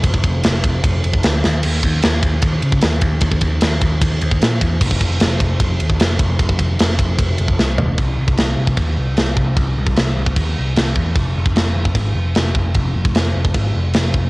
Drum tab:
CC |----------------|x---------------|----------------|x---------------|
RD |x-x-x-x-x-x-x---|--x-x-x-x-x-x-x-|x-x-x-x-x-x-x-x-|--x-x-x-x-x-x-x-|
SD |----o-------o-o-|----o-------o---|----o-------o---|----o-------o---|
FT |----------------|----------------|----------------|----------------|
BD |ooo---o-o--o----|--o---o-o--o--o-|ooo---o-o--o--o-|ooo---o-o--o--o-|

CC |----------------|x---x---x---x---|x---x---x---x---|x---x---x---x---|
RD |x-x-x-x-x-x-----|----------------|----------------|----------------|
SD |----o-------o---|----o-------o---|----o-------o---|----o-------o---|
FT |--------------o-|----------------|----------------|----------------|
BD |ooo---o-o--o----|o--o---oo-----o-|o--o---oo-----o-|o--o---oo-----o-|

CC |x---x---x---x---|
RD |----------------|
SD |----o-------o---|
FT |----------------|
BD |o--o---oo-----o-|